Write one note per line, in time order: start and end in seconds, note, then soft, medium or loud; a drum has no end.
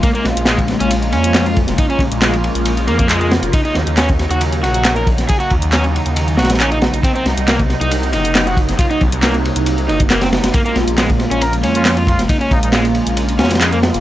0.00 7.00 C#3 medium
0.00 3.50 G#3 medium
0.00 7.00 A#3 medium
0.00 0.09 A#3 medium
0.00 3.50 F4 loud
0.00 kick loud
0.00 closed hi-hat medium
0.00 ride medium
0.15 0.24 A#3 medium
0.15 closed hi-hat soft
0.24 0.33 A#1 loud
0.24 snare soft
0.24 ride medium
0.37 0.74 A#1 medium
0.37 closed hi-hat medium
0.45 0.57 G#3 loud
0.45 snare loud
0.45 clap loud
0.45 closed hi-hat medium
0.45 ride loud
0.58 kick medium
0.58 closed hi-hat soft
0.68 snare soft
0.68 ride medium
0.80 1.14 A#1 loud
0.80 0.89 C#4 loud
0.80 closed hi-hat medium
0.90 closed hi-hat medium
0.90 ride medium
1.02 closed hi-hat soft
1.12 1.56 F2 loud
1.12 1.45 C#4 medium
1.12 ride medium
1.24 closed hi-hat medium
1.34 snare loud
1.34 clap loud
1.34 closed hi-hat medium
1.34 ride medium
1.46 1.55 F4 medium
1.46 closed hi-hat soft
1.56 1.65 F2 loud
1.56 kick medium
1.56 ride medium
1.67 1.75 F1 medium
1.67 snare medium
1.67 closed hi-hat medium
1.78 1.84 D#4 medium
1.78 kick loud
1.78 closed hi-hat medium
1.78 ride medium
1.90 2.00 C#4 loud
1.90 closed hi-hat soft
1.99 2.07 A#1 loud
1.99 kick loud
1.99 ride medium
2.12 2.50 A#1 medium
2.12 closed hi-hat medium
2.21 2.33 G#3 medium
2.21 snare loud
2.21 clap loud
2.21 closed hi-hat medium
2.21 ride loud
2.34 closed hi-hat soft
2.44 ride medium
2.55 2.89 A#1 medium
2.55 closed hi-hat medium
2.65 closed hi-hat medium
2.65 ride medium
2.77 closed hi-hat soft
2.87 3.31 F2 medium
2.87 2.98 A#3 medium
2.87 ride medium
2.99 3.08 A#3 loud
2.99 kick medium
2.99 closed hi-hat medium
3.10 3.20 G#3 medium
3.10 clap loud
3.10 closed hi-hat medium
3.10 ride medium
3.21 3.31 G#3 medium
3.21 closed hi-hat soft
3.31 3.39 F2 loud
3.31 snare loud
3.31 ride medium
3.42 3.50 F1 medium
3.42 closed hi-hat medium
3.42 ride soft
3.53 7.00 F#3 medium
3.53 10.50 D#4 loud
3.53 3.60 D#4 medium
3.53 kick loud
3.53 closed hi-hat medium
3.53 ride loud
3.65 3.74 D#4 medium
3.65 closed hi-hat soft
3.75 3.83 D#2 loud
3.75 snare medium
3.75 ride medium
3.87 4.25 D#2 medium
3.87 closed hi-hat medium
3.97 4.07 C#4 loud
3.97 snare loud
3.97 clap loud
3.97 closed hi-hat medium
3.97 ride medium
4.09 kick loud
4.09 closed hi-hat soft
4.19 snare soft
4.19 ride medium
4.30 4.64 D#2 medium
4.30 4.40 F#4 loud
4.30 closed hi-hat medium
4.41 closed hi-hat medium
4.41 ride medium
4.52 closed hi-hat soft
4.63 5.06 A#1 loud
4.63 4.95 F#4 medium
4.63 ride medium
4.74 closed hi-hat medium
4.85 snare loud
4.85 clap loud
4.85 closed hi-hat medium
4.85 ride medium
4.96 5.05 A#4 medium
4.96 closed hi-hat soft
5.07 5.15 A#1 loud
5.07 kick medium
5.07 ride medium
5.18 5.25 A#1 medium
5.18 snare medium
5.18 closed hi-hat medium
5.29 5.35 G#4 medium
5.29 kick loud
5.29 closed hi-hat medium
5.29 ride medium
5.40 5.50 F#4 loud
5.40 closed hi-hat soft
5.50 5.59 D#2 loud
5.50 kick medium
5.50 ride medium
5.62 6.00 D#2 medium
5.62 closed hi-hat medium
5.72 5.84 C#4 medium
5.72 snare loud
5.72 clap loud
5.72 closed hi-hat soft
5.72 ride medium
5.84 closed hi-hat soft
5.96 ride medium
6.06 6.40 D#2 medium
6.06 closed hi-hat medium
6.16 closed hi-hat medium
6.16 ride medium
6.28 closed hi-hat soft
6.37 6.81 A#1 loud
6.37 6.49 F#4 medium
6.37 snare medium
6.37 ride medium
6.44 snare medium
6.44 ride medium
6.50 snare medium
6.50 closed hi-hat medium
6.50 ride medium
6.54 snare loud
6.54 ride medium
6.60 6.71 C#4 medium
6.60 clap loud
6.60 closed hi-hat medium
6.60 ride medium
6.72 6.77 D#4 medium
6.72 closed hi-hat soft
6.82 6.90 A#1 loud
6.82 snare loud
6.82 ride medium
6.93 7.01 A#1 medium
6.93 closed hi-hat medium
6.93 ride soft
7.03 10.51 C3 medium
7.03 10.51 F#3 medium
7.03 14.00 A#3 medium
7.03 7.10 C4 medium
7.03 kick loud
7.03 closed hi-hat medium
7.03 ride medium
7.15 7.24 C4 medium
7.15 closed hi-hat soft
7.26 7.34 C2 loud
7.26 snare medium
7.26 ride medium
7.37 7.75 C2 medium
7.37 closed hi-hat medium
7.48 7.58 A#3 loud
7.48 snare loud
7.48 clap loud
7.48 closed hi-hat medium
7.48 ride medium
7.59 kick loud
7.59 closed hi-hat soft
7.70 snare soft
7.70 ride medium
7.81 8.15 C2 loud
7.81 7.90 D#4 loud
7.81 closed hi-hat medium
7.91 closed hi-hat medium
7.91 ride medium
8.03 closed hi-hat soft
8.13 8.56 F#1 loud
8.13 8.46 D#4 medium
8.13 ride medium
8.25 closed hi-hat medium
8.35 snare loud
8.35 clap loud
8.35 closed hi-hat medium
8.35 ride medium
8.47 8.56 F#4 medium
8.47 closed hi-hat soft
8.57 8.65 F#1 loud
8.57 kick medium
8.57 ride medium
8.68 8.76 F#1 medium
8.68 snare soft
8.68 closed hi-hat medium
8.79 8.85 F4 medium
8.79 kick loud
8.79 closed hi-hat medium
8.79 ride medium
8.91 9.00 D#4 loud
8.91 closed hi-hat soft
9.01 9.09 C2 loud
9.01 kick loud
9.01 ride medium
9.12 9.50 C2 medium
9.12 closed hi-hat medium
9.23 9.34 A#3 medium
9.23 snare loud
9.23 clap loud
9.23 closed hi-hat medium
9.23 ride medium
9.34 closed hi-hat soft
9.45 ride medium
9.56 9.90 C2 medium
9.56 closed hi-hat medium
9.66 closed hi-hat medium
9.66 ride medium
9.78 closed hi-hat soft
9.88 10.32 F#1 loud
9.88 9.99 D#4 medium
9.88 ride medium
10.00 kick loud
10.00 closed hi-hat medium
10.10 10.21 A#3 medium
10.10 snare loud
10.10 clap loud
10.10 closed hi-hat medium
10.10 ride medium
10.21 10.27 C4 medium
10.21 snare loud
10.21 closed hi-hat soft
10.21 ride medium
10.32 10.40 F#1 loud
10.32 snare loud
10.32 ride medium
10.44 10.51 F#1 medium
10.44 snare loud
10.44 closed hi-hat medium
10.44 ride medium
10.54 14.00 C#3 medium
10.54 14.00 G#3 medium
10.54 10.60 A#3 medium
10.54 14.00 F4 loud
10.54 kick loud
10.54 closed hi-hat medium
10.54 ride medium
10.65 10.75 A#3 medium
10.65 closed hi-hat soft
10.76 10.84 A#1 loud
10.76 snare medium
10.76 ride medium
10.88 11.26 A#1 medium
10.88 closed hi-hat medium
10.98 11.08 G#3 loud
10.98 snare loud
10.98 clap loud
10.98 closed hi-hat medium
10.98 ride medium
11.10 kick loud
11.10 closed hi-hat soft
11.20 snare soft
11.20 ride medium
11.31 11.65 A#1 loud
11.31 11.40 C#4 loud
11.31 closed hi-hat medium
11.41 11.54 A#4 medium
11.41 closed hi-hat medium
11.41 ride medium
11.53 closed hi-hat soft
11.63 12.06 F2 loud
11.63 11.96 C#4 medium
11.63 ride medium
11.75 11.82 F4 medium
11.75 closed hi-hat medium
11.85 11.93 F4 medium
11.85 snare loud
11.85 clap loud
11.85 closed hi-hat medium
11.85 ride loud
11.97 12.06 F4 medium
11.97 closed hi-hat soft
12.07 12.15 F2 loud
12.07 12.20 F4 medium
12.07 kick loud
12.07 ride medium
12.19 12.26 F1 medium
12.19 snare medium
12.19 closed hi-hat medium
12.29 12.35 D#4 medium
12.29 kick loud
12.29 closed hi-hat medium
12.29 ride medium
12.41 12.51 C#4 loud
12.41 closed hi-hat soft
12.51 12.59 A#1 loud
12.51 12.59 D#4 medium
12.51 kick loud
12.51 ride medium
12.63 13.01 A#1 medium
12.63 12.70 D#4 medium
12.63 closed hi-hat medium
12.72 12.84 G#3 medium
12.72 snare loud
12.72 clap loud
12.72 closed hi-hat medium
12.72 ride loud
12.85 closed hi-hat soft
12.95 ride medium
13.07 13.41 A#1 medium
13.07 closed hi-hat medium
13.17 closed hi-hat medium
13.17 ride medium
13.29 closed hi-hat soft
13.39 13.82 F2 loud
13.39 13.50 C#4 medium
13.39 snare medium
13.39 ride medium
13.44 snare medium
13.44 ride medium
13.51 snare medium
13.51 closed hi-hat medium
13.51 ride medium
13.55 snare medium
13.55 ride medium
13.61 13.72 G#3 medium
13.61 clap loud
13.61 closed hi-hat medium
13.61 ride medium
13.72 13.78 A#3 medium
13.72 closed hi-hat soft
13.83 13.91 F2 loud
13.83 snare loud
13.83 ride medium
13.94 14.00 F1 medium
13.94 closed hi-hat medium
13.94 ride soft